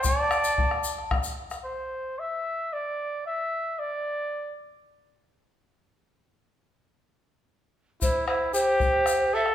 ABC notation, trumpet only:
X:1
M:6/8
L:1/8
Q:3/8=75
K:Cmix
V:1 name="Trumpet"
d4 z2 | c2 e2 d2 | e2 d3 z | z6 |
z6 | E E G3 A |]